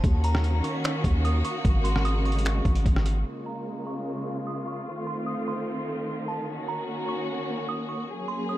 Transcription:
0.04 0.62 D#2 loud
0.04 1.63 D#3 medium
0.04 3.23 A#3 medium
0.04 1.63 C#4 medium
0.04 3.23 F#4 medium
0.04 kick loud
0.04 closed hi-hat medium
0.24 0.62 A#5 medium
0.24 closed hi-hat medium
0.35 cross-stick loud
0.44 closed hi-hat medium
0.64 1.21 C#6 medium
0.64 closed hi-hat medium
0.84 finger snap loud
0.84 closed hi-hat medium
1.04 1.43 D#2 loud
1.04 kick loud
1.04 closed hi-hat medium
1.25 1.44 D#6 medium
1.25 closed hi-hat medium
1.45 1.64 C#6 medium
1.45 closed hi-hat medium
1.65 2.61 G#1 loud
1.65 3.24 C#3 medium
1.65 3.24 G#3 medium
1.65 kick loud
1.65 closed hi-hat medium
1.84 2.04 C6 medium
1.84 closed hi-hat medium
1.96 cross-stick loud
2.05 2.24 D#6 medium
2.05 closed hi-hat medium
2.25 2.82 C#6 medium
2.25 closed hi-hat soft
2.32 closed hi-hat medium
2.39 closed hi-hat medium
2.45 finger snap loud
2.45 closed hi-hat medium
2.65 2.85 G#1 loud
2.65 kick loud
2.65 closed hi-hat soft
2.75 closed hi-hat medium
2.86 3.24 G#1 loud
2.86 kick medium
2.86 closed hi-hat medium
2.96 cross-stick medium
3.06 closed hi-hat medium
3.26 4.85 C#3 medium
3.26 4.85 G#3 medium
3.26 4.85 A#3 medium
3.26 6.45 F4 medium
3.46 3.84 A#5 medium
3.87 4.43 C#6 medium
4.47 4.66 D#6 medium
4.67 4.86 C#6 medium
4.87 8.06 D#3 medium
4.87 6.46 A3 medium
4.87 6.46 C4 medium
5.07 5.26 C6 medium
5.26 5.46 D#6 medium
5.48 6.24 C6 medium
6.28 6.47 A5 medium
6.48 8.07 A#3 medium
6.48 8.07 C#4 medium
6.48 8.07 F#4 medium
6.68 7.06 A#5 medium
7.09 7.65 C#6 medium
7.69 7.88 D#6 medium
7.89 8.08 C#6 medium
8.09 8.58 F#3 medium
8.09 8.58 A#3 medium
8.09 8.58 C#4 medium
8.09 8.58 G#4 medium
8.28 8.48 C6 medium
8.49 8.58 D#6 medium

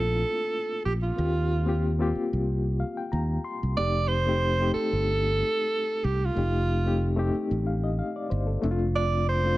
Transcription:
0.00 0.23 A#1 medium
0.00 1.19 A3 medium
0.00 0.21 A#3 medium
0.00 1.17 C4 medium
0.00 1.19 D4 medium
0.00 1.19 E4 medium
0.00 1.18 F4 medium
0.00 0.84 A4 medium
0.85 1.10 A#1 medium
0.85 0.93 G4 medium
1.03 1.96 F4 medium
1.16 2.11 D#2 loud
1.16 1.48 A#3 medium
1.16 1.48 C4 medium
1.16 1.49 F4 medium
1.16 1.49 G4 medium
1.66 1.86 A#3 medium
1.66 1.87 C4 medium
1.66 1.87 F4 medium
1.66 1.88 G4 medium
1.99 2.81 A#3 medium
1.99 2.81 C4 medium
1.99 2.81 F4 medium
1.99 2.82 G4 medium
2.15 muted fingered electric bass stroke soft
2.33 2.82 C2 medium
2.80 2.96 F5 medium
2.97 3.11 G5 medium
3.12 3.37 D#2 medium
3.12 3.42 A#5 medium
3.44 3.74 C6 medium
3.63 3.74 C2 medium
3.76 4.71 F1 medium
3.76 4.07 A3 medium
3.76 4.08 C4 medium
3.76 4.08 D#4 medium
3.76 4.09 G4 medium
3.76 4.10 D5 medium
4.08 4.73 C5 loud
4.26 4.46 A3 medium
4.26 4.46 C4 medium
4.26 4.47 D#4 medium
4.26 4.47 G4 medium
4.59 5.40 A3 medium
4.59 5.41 C4 medium
4.59 5.41 D#4 medium
4.59 5.42 G4 medium
4.74 6.06 A4 loud
4.93 5.41 G1 medium
6.04 6.29 C2 medium
6.04 6.27 G4 medium
6.25 7.20 F4 medium
6.35 7.30 F1 medium
6.35 6.67 A3 medium
6.35 6.67 C4 medium
6.35 6.68 D#4 medium
6.35 6.68 G4 medium
6.84 7.05 A3 medium
6.84 7.05 C4 medium
6.84 7.06 D#4 medium
6.84 7.06 G4 medium
7.16 7.99 A3 medium
7.16 7.99 C4 medium
7.16 8.00 D#4 medium
7.16 8.00 G4 medium
7.34 muted fingered electric bass stroke soft
7.51 8.00 A1 medium
7.67 7.83 F5 medium
7.84 7.98 D#5 medium
7.99 8.15 F5 medium
8.16 8.30 D5 medium
8.30 8.56 G1 medium
8.30 8.47 C5 medium
8.47 8.78 A4 medium
8.62 9.57 F1 medium
8.62 9.27 A3 medium
8.62 9.28 C4 medium
8.62 9.28 D4 medium
8.62 8.71 E4 medium
8.71 9.32 F4 loud
8.96 9.26 D5 loud
9.29 9.57 C5 loud
9.44 9.57 A3 medium
9.44 9.57 C4 medium
9.44 9.57 D4 medium
9.44 9.57 F4 medium

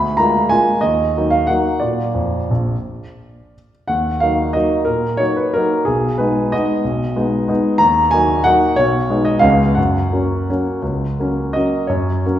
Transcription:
0.00 0.18 D2 soft
0.00 0.18 B5 medium
0.17 0.48 G#3 soft
0.17 0.48 A#3 soft
0.17 0.48 F4 soft
0.17 0.50 A#5 medium
0.49 0.80 G#3 soft
0.49 0.80 A#3 soft
0.49 0.80 F4 soft
0.49 0.82 G#5 medium
0.81 1.14 D#2 soft
0.81 1.30 D#5 medium
1.16 1.46 F#3 soft
1.16 1.46 A#3 soft
1.16 1.47 D#4 soft
1.31 1.48 F5 medium
1.47 1.79 F#3 soft
1.47 1.79 A#3 soft
1.47 1.79 D#4 soft
1.47 1.81 F#5 medium
1.80 2.05 A#2 soft
1.80 2.08 A#3 soft
1.80 2.08 F4 soft
1.80 3.70 D5 medium
2.14 2.39 F2 soft
2.51 2.74 A#1 soft
3.88 4.21 D#2 soft
3.88 4.21 F#5 medium
4.20 4.52 F#3 soft
4.20 4.52 A#3 soft
4.20 4.52 D#4 soft
4.20 4.55 F5 medium
4.53 4.84 F#3 soft
4.53 4.84 A#3 soft
4.53 4.85 D#4 soft
4.53 4.87 D#5 medium
4.85 5.19 A#2 soft
4.85 5.19 A#4 medium
5.17 5.50 F#3 soft
5.17 5.50 A#3 soft
5.17 5.50 D#4 soft
5.17 5.35 C#5 medium
5.36 5.53 B4 soft
5.54 5.84 F#3 soft
5.54 5.84 A#3 soft
5.54 5.85 D#4 soft
5.54 5.86 A#4 medium
5.85 6.18 B1 soft
5.85 6.18 G#4 medium
6.18 6.50 G#3 soft
6.18 6.49 B3 soft
6.18 6.50 D#4 soft
6.18 6.52 B4 medium
6.52 6.82 G#3 soft
6.52 6.83 B3 soft
6.52 6.83 D#4 soft
6.52 7.82 D#5 medium
6.84 7.15 B1 soft
7.16 7.46 G#3 soft
7.16 7.46 B3 soft
7.16 7.47 D#4 soft
7.48 7.78 G#3 soft
7.48 7.78 B3 soft
7.48 7.78 D#4 soft
7.78 8.12 D#2 medium
7.78 8.12 A#5 medium
8.11 8.42 F#3 soft
8.11 8.43 A#3 soft
8.11 8.43 D#4 soft
8.11 8.45 G#5 medium
8.44 8.75 F#3 soft
8.44 8.75 A#3 soft
8.44 8.75 D#4 medium
8.44 8.77 F#5 medium
8.76 9.09 B1 soft
8.76 9.26 C#5 medium
9.10 9.40 G#3 soft
9.10 9.40 B3 soft
9.10 9.41 D#4 soft
9.25 9.43 D#5 medium
9.39 9.75 C#2 medium
9.39 9.73 G#3 soft
9.39 9.73 B3 soft
9.39 9.73 C#4 soft
9.39 9.76 F5 medium
9.75 10.11 F#2 soft
9.75 11.53 F#5 medium
10.13 10.45 F#3 soft
10.13 10.45 A#3 soft
10.13 10.45 C#4 soft
10.50 10.81 F#3 soft
10.50 10.81 A#3 soft
10.50 10.81 C#4 soft
10.82 11.17 C#2 soft
11.19 11.52 F#3 soft
11.19 11.52 A#3 soft
11.19 11.52 C#4 soft
11.53 11.87 F#3 soft
11.53 11.87 A#3 soft
11.53 11.87 C#4 soft
11.53 11.89 D#5 medium
11.87 12.23 F#2 soft
11.87 12.39 C#5 medium
12.26 12.39 F#3 soft
12.26 12.39 A#3 soft
12.26 12.39 C#4 soft

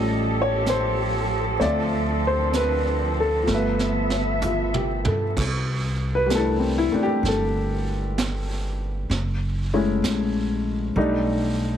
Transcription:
0.00 1.55 A1 medium
0.00 1.59 F3 soft
0.00 5.33 F3 medium
0.00 1.60 G3 soft
0.00 1.59 A3 soft
0.00 1.60 C#4 soft
0.00 1.57 G4 soft
0.00 1.57 G4 medium
0.00 5.32 A4 medium
0.00 0.39 D#5 medium
0.41 0.69 C#5 medium
0.66 1.52 C5 medium
0.66 brush sweep soft
0.66 snare soft
0.66 hi-hat pedal soft
1.59 3.43 D2 medium
1.59 3.42 F3 soft
1.59 3.46 A3 soft
1.59 3.45 C4 medium
1.59 3.48 C4 soft
1.59 3.45 D4 soft
1.59 1.62 C#5 soft
1.59 2.20 D5 medium
1.59 3.48 E5 soft
1.59 brush sweep soft
1.59 snare soft
1.64 3.45 F4 medium
2.27 2.56 C5 medium
2.53 3.20 B4 medium
2.53 brush sweep soft
2.53 snare soft
2.53 hi-hat pedal soft
3.20 3.49 A4 medium
3.43 5.34 F3 soft
3.47 5.03 G1 medium
3.47 5.36 A3 soft
3.47 5.35 B3 medium
3.47 5.38 B3 soft
3.47 5.35 E5 medium
3.47 snare soft
3.53 4.42 F4 soft
3.53 5.06 B4 soft
3.53 5.40 E5 soft
3.79 snare soft
4.10 snare soft
4.42 5.04 F4 soft
4.42 floor tom soft
4.42 hi-hat pedal soft
4.74 5.24 G4 soft
4.74 mid tom soft
5.05 5.34 G2 soft
5.05 5.55 A4 soft
5.05 mid tom medium
5.37 6.90 C2 medium
5.37 brush sweep soft
5.37 kick medium
5.37 snare soft
5.37 crash medium
6.15 6.29 B4 medium
6.26 9.08 G3 soft
6.26 6.90 A3 soft
6.26 brush sweep soft
6.26 snare soft
6.26 hi-hat pedal soft
6.34 6.93 D4 soft
6.34 6.77 E4 soft
6.34 6.64 A4 medium
6.60 6.92 C4 soft
6.78 7.00 E4 medium
6.92 9.10 A3 soft
6.92 9.11 C4 soft
6.92 9.11 D4 soft
6.92 muted upright bass stroke soft
7.03 7.20 G4 medium
7.23 9.06 G1 medium
7.23 brush sweep soft
7.23 snare soft
7.28 8.15 A4 medium
8.18 brush sweep soft
8.18 snare soft
8.18 hi-hat pedal soft
9.10 9.99 F#1 medium
9.10 brush sweep soft
9.10 snare soft
9.74 10.96 G#3 soft
9.74 10.95 A3 soft
9.74 10.97 C#4 soft
9.74 10.97 E4 soft
10.02 10.92 A#1 medium
10.02 brush sweep soft
10.02 snare soft
10.02 hi-hat pedal medium
10.96 11.77 B1 medium
10.96 11.77 G3 soft
10.96 11.77 A3 medium
10.96 11.77 D4 soft
10.96 11.77 D#4 medium
10.96 brush sweep soft

